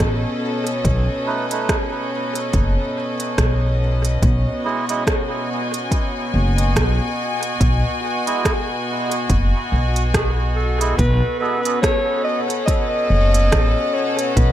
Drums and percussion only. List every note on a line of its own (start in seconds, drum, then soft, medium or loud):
0.00 kick loud
0.00 cross-stick medium
0.00 closed hi-hat soft
0.67 closed hi-hat soft
0.85 kick medium
0.85 closed hi-hat soft
1.51 closed hi-hat soft
1.69 kick medium
1.69 cross-stick medium
1.69 closed hi-hat soft
2.35 closed hi-hat soft
2.53 kick loud
2.53 closed hi-hat soft
3.20 closed hi-hat soft
3.38 kick medium
3.38 cross-stick medium
3.38 closed hi-hat soft
4.05 closed hi-hat soft
4.22 kick medium
4.22 closed hi-hat soft
4.89 closed hi-hat soft
5.07 kick medium
5.07 cross-stick medium
5.07 closed hi-hat soft
5.74 closed hi-hat soft
5.91 kick medium
5.91 closed hi-hat soft
6.58 closed hi-hat soft
6.76 kick medium
6.76 cross-stick medium
6.76 closed hi-hat soft
7.43 closed hi-hat soft
7.61 kick loud
7.61 closed hi-hat soft
8.27 closed hi-hat medium
8.45 kick medium
8.45 cross-stick medium
8.45 closed hi-hat soft
9.11 closed hi-hat soft
9.30 kick loud
9.30 closed hi-hat soft
9.96 closed hi-hat soft
10.14 kick medium
10.14 cross-stick medium
10.14 closed hi-hat soft
10.81 closed hi-hat soft
10.99 kick loud
10.99 closed hi-hat soft
11.65 closed hi-hat medium
11.83 kick loud
11.83 cross-stick medium
11.83 closed hi-hat soft
12.50 closed hi-hat medium
12.68 kick loud
12.68 closed hi-hat soft
13.34 closed hi-hat medium
13.52 kick loud
13.52 cross-stick medium
13.52 closed hi-hat soft
14.19 closed hi-hat medium
14.37 kick loud
14.37 closed hi-hat soft